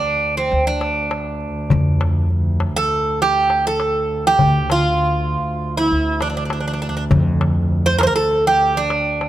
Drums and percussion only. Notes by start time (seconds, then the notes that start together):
0.51 darbuka ka
0.81 darbuka tek
0.96 darbuka ka
1.11 darbuka tek
1.41 darbuka ka
1.70 darbuka dum
2.01 darbuka tek
2.30 darbuka ka
2.60 darbuka tek
3.20 darbuka ka
3.50 darbuka tek
3.65 darbuka ka
3.80 darbuka tek
4.10 darbuka ka
4.39 darbuka dum
4.70 darbuka tek
5.00 darbuka ka
5.91 darbuka ka
6.21 darbuka tek
6.36 darbuka ka
6.50 darbuka tek
6.80 darbuka ka
7.11 darbuka dum
7.41 darbuka tek
7.72 darbuka ka
8.01 darbuka tek
8.31 darbuka ka
8.61 darbuka ka
8.90 darbuka tek
9.06 darbuka ka
9.21 darbuka tek